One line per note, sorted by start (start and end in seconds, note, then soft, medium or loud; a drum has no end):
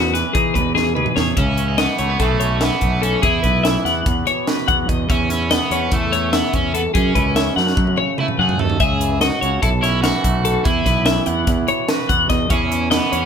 0.00 0.22 E2 medium
0.00 1.16 E2 medium
0.00 0.12 E3 medium
0.00 0.35 B3 medium
0.00 0.14 F#4 medium
0.00 0.96 G#4 medium
0.00 0.96 B4 medium
0.14 1.78 E3 medium
0.14 0.34 B4 medium
0.14 snare soft
0.14 closed hi-hat medium
0.33 0.57 E3 medium
0.33 1.36 D#4 medium
0.33 0.54 G#4 medium
0.33 kick loud
0.33 closed hi-hat medium
0.54 0.96 E2 medium
0.54 1.36 B2 medium
0.54 0.75 B4 medium
0.54 kick medium
0.54 closed hi-hat medium
0.75 0.95 G#4 medium
0.75 snare medium
0.95 1.04 D#2 medium
0.95 1.17 G#4 medium
0.95 1.16 B4 medium
0.95 mid tom medium
1.06 mid tom medium
1.16 1.38 E2 medium
1.16 1.33 E2 medium
1.16 1.35 G#4 medium
1.16 1.37 C#5 medium
1.16 snare medium
1.37 1.86 C#2 medium
1.37 1.79 C#3 medium
1.37 1.79 C#4 medium
1.37 1.78 E5 medium
1.37 kick medium
1.37 closed hi-hat medium
1.58 1.68 C#4 medium
1.58 closed hi-hat medium
1.68 2.20 D#4 soft
1.78 2.20 E3 medium
1.78 2.22 B3 medium
1.78 1.98 D#5 medium
1.78 snare loud
1.78 closed hi-hat medium
1.99 2.16 C#2 medium
1.99 2.10 A3 medium
1.99 2.20 C#5 medium
1.99 closed hi-hat medium
2.10 2.20 B3 soft
2.20 2.69 B1 medium
2.20 2.61 B2 medium
2.20 2.61 E3 medium
2.20 2.63 A3 medium
2.20 2.81 A3 medium
2.20 2.41 C#4 medium
2.20 4.50 G#4 medium
2.20 2.41 A4 medium
2.20 kick medium
2.20 snare soft
2.20 closed hi-hat medium
2.40 3.24 C#4 medium
2.40 2.61 C#5 medium
2.40 closed hi-hat medium
2.61 3.64 E3 medium
2.61 3.03 B3 medium
2.61 3.03 E5 medium
2.61 snare medium
2.61 closed hi-hat medium
2.81 3.15 B1 medium
2.81 3.24 A3 medium
2.81 kick medium
2.81 closed hi-hat medium
3.02 3.22 C#4 medium
3.02 3.22 A4 medium
3.02 closed hi-hat medium
3.22 4.87 E2 medium
3.22 3.40 E2 medium
3.22 4.03 E4 medium
3.22 3.42 G#4 medium
3.22 kick loud
3.22 closed hi-hat medium
3.43 3.77 B1 medium
3.43 3.85 B3 medium
3.43 3.64 B4 medium
3.43 kick medium
3.43 closed hi-hat medium
3.64 5.50 E3 medium
3.64 3.85 E5 medium
3.64 snare loud
3.64 closed hi-hat medium
3.85 4.01 E2 medium
3.85 4.68 B3 medium
3.85 4.27 F#5 medium
3.85 snare soft
3.85 closed hi-hat medium
4.06 4.22 E2 medium
4.06 kick loud
4.06 closed hi-hat medium
4.26 5.09 B2 medium
4.26 4.48 C#5 medium
4.26 closed hi-hat soft
4.47 5.07 F#4 medium
4.47 4.68 B4 medium
4.47 snare medium
4.47 closed hi-hat medium
4.68 4.85 E2 medium
4.68 5.70 B3 soft
4.68 4.89 F#5 medium
4.68 kick medium
4.68 closed hi-hat medium
4.88 5.08 E2 medium
4.88 5.05 E2 medium
4.88 5.10 D#5 medium
4.88 kick medium
4.88 closed hi-hat medium
5.09 6.11 E2 medium
5.09 5.58 E2 medium
5.09 5.29 C#4 loud
5.09 5.50 E5 medium
5.09 kick loud
5.09 closed hi-hat medium
5.30 5.52 C#4 medium
5.30 6.98 E4 medium
5.30 snare soft
5.30 closed hi-hat medium
5.50 7.35 E3 medium
5.50 5.94 B3 medium
5.50 5.71 D#5 medium
5.50 snare loud
5.50 closed hi-hat medium
5.71 5.87 E2 medium
5.71 7.56 C#4 soft
5.71 5.92 C#5 medium
5.71 closed hi-hat medium
5.92 6.41 E2 medium
5.92 6.35 A3 medium
5.92 6.13 A4 medium
5.92 kick medium
5.92 closed hi-hat medium
6.12 6.73 E2 medium
6.12 6.32 C#5 medium
6.12 closed hi-hat medium
6.33 6.53 B3 medium
6.33 6.74 E5 medium
6.33 snare medium
6.33 closed hi-hat medium
6.53 6.86 E2 medium
6.53 6.74 C#4 medium
6.53 kick medium
6.53 closed hi-hat medium
6.74 6.95 E2 medium
6.74 6.80 B3 medium
6.74 6.93 A4 medium
6.74 closed hi-hat medium
6.94 7.11 F#2 medium
6.94 8.59 F#2 medium
6.94 7.53 C#4 medium
6.94 7.15 G#4 medium
6.94 kick loud
6.94 closed hi-hat medium
7.15 7.48 C#2 medium
7.15 9.24 E4 medium
7.15 7.36 B4 medium
7.15 kick medium
7.15 closed hi-hat medium
7.36 8.78 F#3 medium
7.36 7.56 E5 medium
7.36 snare loud
7.36 closed hi-hat medium
7.56 7.73 F#2 medium
7.56 8.18 A3 medium
7.56 7.98 F#5 medium
7.56 snare medium
7.67 snare soft
7.77 7.93 F#2 loud
7.77 kick medium
7.87 high tom soft
7.97 8.77 C#3 medium
7.97 8.18 C#5 medium
7.97 high tom medium
8.18 8.39 A3 medium
8.18 8.26 E4 medium
8.18 8.39 B4 medium
8.18 mid tom medium
8.28 mid tom medium
8.38 8.55 F#2 medium
8.38 8.81 A3 medium
8.38 8.60 G#4 medium
8.38 8.60 F#5 medium
8.49 floor tom medium
8.59 8.76 D#2 medium
8.59 8.78 F#2 medium
8.59 8.79 A4 medium
8.59 8.80 D#5 medium
8.59 floor tom medium
8.70 floor tom medium
8.80 9.29 C#2 medium
8.80 9.20 C#3 medium
8.80 9.21 G#4 loud
8.80 9.21 E5 medium
8.80 kick medium
8.80 closed hi-hat medium
9.00 9.21 E3 medium
9.00 closed hi-hat medium
9.21 9.42 D#3 medium
9.21 9.62 F#4 medium
9.21 9.41 D#5 medium
9.21 snare loud
9.21 closed hi-hat loud
9.41 9.58 C#2 medium
9.41 9.63 C#3 medium
9.41 9.62 C#5 medium
9.41 closed hi-hat medium
9.62 10.11 B1 medium
9.62 10.04 B2 medium
9.62 9.68 E4 medium
9.62 9.83 A4 medium
9.62 kick medium
9.62 closed hi-hat medium
9.82 10.66 C#4 medium
9.82 10.02 E4 medium
9.82 10.04 C#5 medium
9.82 snare soft
9.82 closed hi-hat medium
10.02 11.06 E3 medium
10.02 10.66 F#4 medium
10.02 10.45 E5 medium
10.02 snare loud
10.02 closed hi-hat medium
10.24 10.57 B1 medium
10.24 10.66 A3 medium
10.24 kick medium
10.24 closed hi-hat medium
10.45 10.65 A4 medium
10.45 closed hi-hat medium
10.64 10.82 E2 medium
10.64 12.29 E2 medium
10.64 11.84 E4 medium
10.64 10.86 G#4 medium
10.64 kick loud
10.64 closed hi-hat medium
10.86 11.18 B1 medium
10.86 11.27 B3 medium
10.86 11.06 B4 medium
10.86 kick medium
10.86 snare soft
10.86 closed hi-hat medium
11.06 12.49 E3 medium
11.06 11.27 E5 medium
11.06 snare loud
11.06 closed hi-hat medium
11.26 11.43 E2 medium
11.26 12.10 B3 soft
11.26 11.68 F#5 medium
11.26 closed hi-hat medium
11.47 11.64 E2 medium
11.47 kick loud
11.47 closed hi-hat medium
11.68 12.50 B2 medium
11.68 11.89 C#5 medium
11.68 closed hi-hat medium
11.89 12.49 F#4 medium
11.89 12.09 B4 medium
11.89 snare loud
11.89 closed hi-hat medium
12.09 12.26 E2 medium
12.09 12.50 B3 medium
12.09 12.29 F#5 medium
12.09 kick medium
12.09 closed hi-hat medium
12.30 12.46 E2 medium
12.30 12.48 E2 medium
12.30 12.50 D#5 medium
12.30 kick medium
12.30 snare soft
12.30 closed hi-hat medium
12.49 13.25 E2 medium
12.49 12.99 E2 medium
12.49 12.91 E3 medium
12.49 13.12 C#4 medium
12.49 12.89 C#4 medium
12.49 12.71 E4 medium
12.49 13.25 G#4 medium
12.49 12.91 E5 medium
12.49 kick loud
12.49 closed hi-hat medium
12.71 13.25 E4 medium
12.71 closed hi-hat medium
12.91 13.25 E3 medium
12.91 13.25 B3 medium
12.91 13.12 D#5 medium
12.91 snare loud
12.91 closed hi-hat medium
13.12 13.25 E2 medium
13.12 13.25 C#4 medium
13.12 13.25 C#5 medium
13.12 closed hi-hat medium